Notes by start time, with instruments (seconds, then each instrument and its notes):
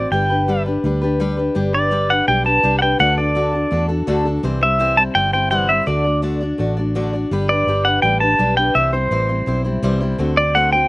Already playing: steel-string acoustic guitar C4 F#4 C5, pedal steel guitar D5
0.11 fingered electric bass G1, steel-string acoustic guitar G3 D4 G4 B4, pedal steel guitar G5
0.30 steel-string acoustic guitar D4 G4 B4
0.48 steel-string acoustic guitar G3 D4 G4 B4
0.66 steel-string acoustic guitar D4 G4 B4
0.84 fingered electric bass D2, steel-string acoustic guitar G3 D4 G4 B4
1.01 steel-string acoustic guitar D4 G4 B4
1.20 steel-string acoustic guitar G3 D4 G4 B4
1.37 steel-string acoustic guitar D4 G4 B4
1.55 fingered electric bass G1, steel-string acoustic guitar G3 D4 G4 B4
1.73 steel-string acoustic guitar D4 G4 B4, pedal steel guitar D5
1.91 steel-string acoustic guitar G3 D4 G4 B4
2.09 steel-string acoustic guitar D4 G4 B4, pedal steel guitar F#5
2.27 fingered electric bass B1, steel-string acoustic guitar G3 D4 G4 B4, pedal steel guitar G5
2.44 steel-string acoustic guitar D4 G4 B4, pedal steel guitar A5
2.63 fingered electric bass C2, steel-string acoustic guitar G3 D4 G4 B4
2.79 steel-string acoustic guitar G4 B4, pedal steel guitar F#5 G5
2.83 steel-string acoustic guitar D4
2.99 fingered electric bass D2, steel-string acoustic guitar D3 A3 D4 F#4 A4, pedal steel guitar F#5
3.17 steel-string acoustic guitar D4 F#4 A4, pedal steel guitar D5
3.35 steel-string acoustic guitar D3 A3 D4 F#4 A4
3.53 steel-string acoustic guitar D4 F#4 A4
3.71 fingered electric bass E2, steel-string acoustic guitar A3 D4 F#4 A4
3.89 steel-string acoustic guitar D4 F#4 A4
4.07 fingered electric bass D2, steel-string acoustic guitar D3 A3 D4 F#4 A4
4.25 steel-string acoustic guitar D4 F#4 A4
4.43 fingered electric bass C2, steel-string acoustic guitar C3 E3 G3 C4 E4 C5
4.61 steel-string acoustic guitar G3 C4 E4 C5, pedal steel guitar E5
4.79 steel-string acoustic guitar C3 E3 G3 C4 E4 C5
4.97 steel-string acoustic guitar G3 C4 E4 C5, pedal steel guitar A5
5.15 fingered electric bass G1, steel-string acoustic guitar G3 C4 E4 C5, pedal steel guitar G5
5.33 steel-string acoustic guitar G3 C4 E4 C5, pedal steel guitar G5
5.50 steel-string acoustic guitar C3 E3 G3 C4 E4 C5, pedal steel guitar F#5
5.69 steel-string acoustic guitar G3 C4 E4 C5, pedal steel guitar E5
5.86 fingered electric bass D2, steel-string acoustic guitar D3 A3 D4 F#4 D5, pedal steel guitar D5
6.04 steel-string acoustic guitar D4 F#4 D5
6.22 steel-string acoustic guitar D3 A3 D4 F#4 D5
6.41 steel-string acoustic guitar D4 F#4 D5
6.58 fingered electric bass A1, steel-string acoustic guitar A3 D4 F#4 D5
6.77 steel-string acoustic guitar D4 F#4 D5
6.95 steel-string acoustic guitar D3 A3 D4 F#4 D5
7.13 steel-string acoustic guitar D4 F#4 D5
7.31 fingered electric bass G1, steel-string acoustic guitar G3 D4 G4 B4
7.49 steel-string acoustic guitar D4 G4 B4, pedal steel guitar D5
7.67 fingered electric bass G1, steel-string acoustic guitar G3 D4 G4 B4
7.85 steel-string acoustic guitar D4 G4 B4, pedal steel guitar F#5
8.02 fingered electric bass A1, steel-string acoustic guitar G3 D4 G4 B4, pedal steel guitar G5
8.20 steel-string acoustic guitar D4 G4 B4, pedal steel guitar A5
8.39 fingered electric bass B1, steel-string acoustic guitar G3 D4 G4 B4
8.57 steel-string acoustic guitar D4 G4 B4, pedal steel guitar G5
8.75 fingered electric bass C2, steel-string acoustic guitar C3 E3 G3 C4 E4 C5, pedal steel guitar E5
8.92 steel-string acoustic guitar G3 C4 E4 C5, pedal steel guitar C5
9.11 fingered electric bass A1, steel-string acoustic guitar C3 E3 G3 C4 E4 C5
9.29 steel-string acoustic guitar G3 C4 E4 C5
9.46 fingered electric bass B1, steel-string acoustic guitar G3 C4 E4 C5
9.64 steel-string acoustic guitar G3 C4 E4 C5
9.83 fingered electric bass C2, steel-string acoustic guitar C3 E3 G3 C4 E4 C5
10.00 steel-string acoustic guitar G3 C4 E4 C5
10.18 fingered electric bass D2, steel-string acoustic guitar D3 A3 C4 F#4 C5
10.36 steel-string acoustic guitar C4 C5, pedal steel guitar D5
10.55 steel-string acoustic guitar D3 A3 C4 F#4 C5, pedal steel guitar F#5
10.72 steel-string acoustic guitar C4 F#4 C5, pedal steel guitar G5